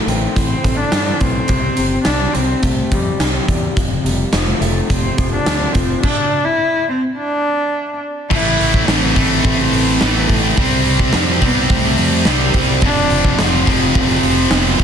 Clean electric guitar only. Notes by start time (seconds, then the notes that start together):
Already playing: A2 E3 A3
0.08 C4
0.35 E3
0.63 A3
0.92 E3
1.20 A3
1.48 C3
1.78 C3
2.06 G3
2.35 C4
2.63 C3
2.92 G3
3.20 C3
3.50 G3
3.77 F2
4.04 C3
4.33 F3
4.61 A3
4.91 C3
5.18 F3
5.46 C3
5.75 F3